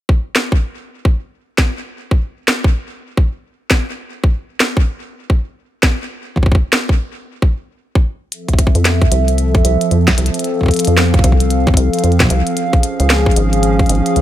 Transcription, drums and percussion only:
0.09 kick loud
0.36 snare loud
0.52 kick medium
1.05 kick loud
1.58 kick loud
1.58 snare loud
2.11 kick loud
2.48 snare loud
2.64 kick loud
3.17 kick loud
3.70 kick loud
3.70 snare loud
4.24 kick loud
4.60 snare loud
4.77 kick loud
5.30 kick loud
5.83 kick loud
5.83 snare loud
6.36 kick soft
6.36 kick medium
6.43 kick medium
6.46 kick medium
6.52 kick medium
6.55 kick medium
6.73 snare loud
6.89 kick loud
7.42 kick loud
7.95 kick loud
8.32 closed hi-hat soft
8.48 kick soft
8.48 closed hi-hat soft
8.53 kick medium
8.59 kick medium
8.59 closed hi-hat medium
8.67 kick medium
8.75 closed hi-hat soft
8.85 snare loud
8.85 closed hi-hat soft
9.02 kick loud
9.02 closed hi-hat soft
9.12 closed hi-hat medium
9.28 closed hi-hat soft
9.38 closed hi-hat soft
9.55 kick loud
9.55 closed hi-hat soft
9.65 closed hi-hat medium
9.81 closed hi-hat soft
9.91 closed hi-hat soft
10.08 kick loud
10.08 snare loud
10.08 closed hi-hat soft
10.18 closed hi-hat medium
10.26 closed hi-hat medium
10.34 closed hi-hat medium
10.39 closed hi-hat soft
10.44 closed hi-hat soft
10.61 kick soft
10.63 kick soft
10.66 kick medium
10.68 kick medium
10.68 closed hi-hat soft
10.74 closed hi-hat soft
10.76 closed hi-hat soft
10.79 closed hi-hat medium
10.85 closed hi-hat medium
10.87 closed hi-hat soft
10.97 snare loud
11.14 kick loud
11.14 closed hi-hat soft
11.19 kick medium
11.24 kick medium
11.24 closed hi-hat medium
11.32 kick medium
11.40 closed hi-hat soft
11.50 closed hi-hat soft
11.67 kick loud
11.67 kick medium
11.67 closed hi-hat soft
11.74 kick medium
11.74 closed hi-hat medium
11.94 closed hi-hat soft
11.99 closed hi-hat soft
12.04 closed hi-hat soft
12.12 closed hi-hat soft
12.20 kick medium
12.20 snare loud
12.20 closed hi-hat soft
12.22 kick medium
12.25 kick soft
12.27 kick soft
12.29 kick soft
12.29 closed hi-hat medium
12.47 closed hi-hat soft
12.57 closed hi-hat soft
12.73 kick loud
12.73 closed hi-hat soft
12.83 closed hi-hat medium
13.00 closed hi-hat medium
13.10 snare loud
13.10 closed hi-hat soft
13.26 kick loud
13.31 closed hi-hat soft
13.36 closed hi-hat medium
13.53 closed hi-hat soft
13.63 closed hi-hat soft
13.79 kick medium
13.79 closed hi-hat soft
13.86 closed hi-hat soft
13.89 closed hi-hat medium
13.95 closed hi-hat soft
14.06 closed hi-hat soft
14.16 closed hi-hat soft

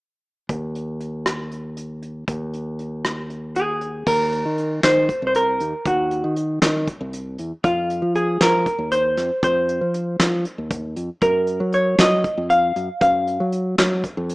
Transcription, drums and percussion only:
0.49 kick medium
0.49 closed hi-hat medium
0.75 closed hi-hat soft
1.01 closed hi-hat soft
1.26 cross-stick medium
1.26 closed hi-hat medium
1.51 closed hi-hat soft
1.77 closed hi-hat medium
2.02 closed hi-hat soft
2.28 kick medium
2.28 closed hi-hat medium
2.54 closed hi-hat soft
2.79 closed hi-hat soft
3.05 cross-stick medium
3.05 closed hi-hat medium
3.30 closed hi-hat soft
3.55 closed hi-hat medium
3.81 closed hi-hat soft
4.07 kick medium
4.07 crash medium
4.32 closed hi-hat soft
4.58 closed hi-hat soft
4.83 snare medium
4.83 closed hi-hat medium
5.09 kick medium
5.09 closed hi-hat medium
5.35 closed hi-hat medium
5.60 closed hi-hat medium
5.86 kick medium
5.86 closed hi-hat medium
6.11 closed hi-hat soft
6.36 closed hi-hat medium
6.62 snare medium
6.62 closed hi-hat medium
6.87 kick medium
6.87 closed hi-hat soft
7.13 closed hi-hat medium
7.38 closed hi-hat soft
7.64 kick medium
7.64 closed hi-hat medium
7.90 closed hi-hat soft
8.15 closed hi-hat soft
8.41 snare medium
8.41 closed hi-hat medium
8.66 kick medium
8.66 closed hi-hat medium
8.92 closed hi-hat medium
9.17 snare soft
9.17 closed hi-hat medium
9.43 kick medium
9.43 closed hi-hat medium
9.69 closed hi-hat soft
9.94 closed hi-hat medium
10.20 snare medium
10.20 closed hi-hat medium
10.45 closed hi-hat medium
10.71 kick medium
10.71 closed hi-hat medium
10.96 closed hi-hat medium
11.22 kick medium
11.22 closed hi-hat medium
11.47 closed hi-hat soft
11.73 closed hi-hat soft
11.99 snare medium
11.99 closed hi-hat medium
12.24 kick medium
12.24 closed hi-hat soft
12.50 closed hi-hat medium
12.76 closed hi-hat soft
13.01 kick medium
13.01 closed hi-hat medium
13.27 closed hi-hat soft
13.52 closed hi-hat medium
13.78 snare medium
13.78 closed hi-hat medium
14.04 kick medium
14.04 closed hi-hat medium
14.29 closed hi-hat medium

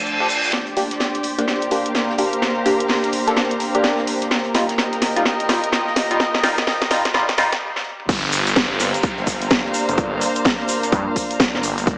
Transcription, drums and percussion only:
0.06 shaker soft
0.29 shaker medium
0.44 shaker soft
0.53 snare soft
0.53 closed hi-hat medium
0.67 closed hi-hat soft
0.77 snare soft
0.77 closed hi-hat medium
0.77 open hi-hat loud
0.91 snare medium
0.91 closed hi-hat medium
1.00 snare loud
1.00 snare soft
1.00 closed hi-hat medium
1.15 snare soft
1.15 closed hi-hat soft
1.23 closed hi-hat medium
1.23 open hi-hat loud
1.39 snare soft
1.39 closed hi-hat medium
1.48 snare medium
1.48 closed hi-hat medium
1.62 closed hi-hat soft
1.62 closed hi-hat medium
1.71 closed hi-hat medium
1.71 open hi-hat medium
1.86 closed hi-hat medium
1.95 snare medium
1.95 snare loud
1.95 closed hi-hat medium
2.10 snare medium
2.18 closed hi-hat medium
2.18 open hi-hat loud
2.33 closed hi-hat medium
2.42 snare medium
2.42 closed hi-hat medium
2.66 closed hi-hat medium
2.66 open hi-hat loud
2.80 closed hi-hat medium
2.88 snare loud
2.88 snare medium
2.88 open hi-hat medium
3.04 snare soft
3.04 closed hi-hat medium
3.12 closed hi-hat medium
3.12 open hi-hat loud
3.27 snare soft
3.27 closed hi-hat medium
3.36 snare medium
3.36 closed hi-hat medium
3.51 closed hi-hat medium
3.60 closed hi-hat medium
3.60 open hi-hat loud
3.75 closed hi-hat medium
3.84 snare medium
3.84 snare loud
3.84 closed hi-hat medium
3.98 snare medium
4.07 closed hi-hat medium
4.07 open hi-hat loud
4.22 snare soft
4.22 closed hi-hat medium
4.31 snare medium
4.31 closed hi-hat medium
4.45 closed hi-hat soft
4.54 snare medium
4.54 snare soft
4.54 closed hi-hat medium
4.54 open hi-hat loud
4.69 snare medium
4.69 closed hi-hat medium
4.78 snare loud
4.78 snare medium
4.78 closed hi-hat medium
4.92 snare soft
4.92 closed hi-hat medium
5.02 snare medium
5.02 closed hi-hat medium
5.02 open hi-hat loud
5.16 snare soft
5.16 closed hi-hat medium
5.25 snare medium
5.25 closed hi-hat medium
5.40 closed hi-hat soft
5.40 closed hi-hat medium
5.49 snare medium
5.49 closed hi-hat medium
5.49 open hi-hat loud
5.64 closed hi-hat medium
5.72 snare loud
5.72 snare medium
5.72 closed hi-hat medium
5.87 snare soft
5.96 snare medium
5.96 closed hi-hat medium
5.96 open hi-hat loud
6.11 closed hi-hat medium
6.20 snare medium
6.20 closed hi-hat medium
6.34 snare medium
6.43 snare medium
6.43 closed hi-hat medium
6.43 open hi-hat loud
6.58 snare medium
6.58 closed hi-hat medium
6.67 snare loud
6.67 open hi-hat medium
6.82 snare medium
6.82 snare soft
6.82 closed hi-hat soft
6.91 snare loud
6.91 closed hi-hat medium
6.91 open hi-hat loud
7.05 snare medium
7.05 snare soft
7.05 closed hi-hat medium
7.14 snare loud
7.14 closed hi-hat medium
7.29 snare medium
7.29 closed hi-hat medium
7.38 snare loud
7.38 closed hi-hat medium
7.38 open hi-hat loud
7.53 snare medium
7.53 closed hi-hat medium
7.76 snare medium
7.85 mid tom medium
8.00 mid tom medium
8.09 kick loud
8.09 closed hi-hat loud
8.09 closed hi-hat medium
8.09 crash loud
8.09 shaker soft
8.23 closed hi-hat soft
8.32 snare soft
8.32 closed hi-hat medium
8.32 open hi-hat loud
8.32 shaker medium
8.47 snare medium
8.47 closed hi-hat medium
8.47 shaker medium
8.56 kick loud
8.56 snare loud
8.56 closed hi-hat medium
8.71 snare medium
8.80 snare soft
8.80 closed hi-hat medium
8.80 open hi-hat loud
8.80 shaker medium
8.94 snare soft
8.94 closed hi-hat medium
8.94 shaker soft
9.03 kick loud
9.03 closed hi-hat medium
9.03 shaker soft
9.18 closed hi-hat soft
9.27 kick medium
9.27 snare soft
9.27 closed hi-hat medium
9.27 open hi-hat loud
9.27 shaker loud
9.41 snare soft
9.41 closed hi-hat medium
9.41 shaker soft
9.50 kick loud
9.50 snare loud
9.50 closed hi-hat medium
9.50 shaker soft
9.65 snare medium
9.74 closed hi-hat medium
9.74 open hi-hat loud
9.74 shaker medium
9.89 closed hi-hat medium
9.89 shaker medium
9.98 kick loud
9.98 closed hi-hat medium
9.98 shaker soft
10.21 closed hi-hat medium
10.21 open hi-hat loud
10.21 shaker medium
10.35 closed hi-hat medium
10.35 shaker medium
10.45 kick loud
10.45 snare loud
10.45 closed hi-hat soft
10.45 open hi-hat medium
10.45 shaker soft
10.60 snare soft
10.68 closed hi-hat medium
10.68 open hi-hat loud
10.68 shaker medium
10.83 snare medium
10.83 closed hi-hat medium
10.83 shaker medium
10.92 kick loud
10.92 closed hi-hat loud
10.92 closed hi-hat medium
10.92 shaker soft
11.16 kick medium
11.16 closed hi-hat medium
11.16 open hi-hat loud
11.16 shaker medium
11.31 closed hi-hat medium
11.31 shaker medium
11.40 kick loud
11.40 snare loud
11.40 closed hi-hat medium
11.40 shaker soft
11.54 snare medium
11.54 snare soft
11.63 closed hi-hat medium
11.63 open hi-hat loud
11.63 shaker loud
11.78 snare soft
11.78 closed hi-hat medium
11.78 shaker medium
11.86 kick loud
11.86 closed hi-hat medium
11.86 closed hi-hat loud
11.86 shaker soft

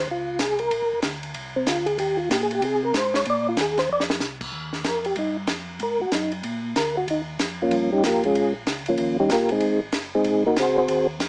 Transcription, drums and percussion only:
0.39 snare medium
0.39 hi-hat pedal medium
0.39 ride medium
0.59 ride soft
0.71 ride medium
1.02 snare medium
1.02 hi-hat pedal medium
1.02 ride medium
1.23 ride soft
1.34 ride medium
1.67 snare medium
1.67 hi-hat pedal medium
1.67 ride medium
1.86 ride soft
1.98 ride medium
2.31 snare medium
2.31 hi-hat pedal medium
2.31 ride medium
2.51 ride soft
2.62 ride medium
2.94 snare medium
2.94 hi-hat pedal medium
2.94 ride medium
3.14 snare medium
3.25 ride medium
3.57 snare medium
3.57 hi-hat pedal medium
3.57 ride medium
3.78 snare soft
3.78 ride soft
4.00 snare medium
4.10 snare medium
4.20 snare medium
4.20 hi-hat pedal medium
4.41 kick medium
4.41 crash medium
4.73 snare soft
4.84 snare medium
4.84 hi-hat pedal soft
4.84 ride medium
5.04 ride soft
5.16 ride medium
5.47 snare medium
5.47 hi-hat pedal medium
5.47 ride medium
5.80 ride medium
6.12 snare medium
6.12 hi-hat pedal soft
6.12 ride medium
6.32 ride soft
6.43 ride medium
6.76 snare medium
6.76 hi-hat pedal medium
6.76 ride medium
7.08 ride medium
7.39 snare medium
7.39 hi-hat pedal medium
7.39 ride medium
7.71 ride medium
8.03 snare medium
8.03 hi-hat pedal medium
8.03 ride medium
8.23 ride soft
8.35 ride medium
8.67 snare medium
8.67 hi-hat pedal soft
8.67 ride medium
8.86 ride soft
8.97 ride medium
9.30 snare medium
9.30 hi-hat pedal medium
9.30 ride medium
9.49 ride soft
9.60 ride medium
9.92 snare medium
9.92 hi-hat pedal medium
9.92 ride medium
10.24 ride medium
10.56 snare medium
10.56 hi-hat pedal medium
10.56 ride medium
10.88 ride medium
11.20 snare medium
11.20 hi-hat pedal medium
11.20 ride medium

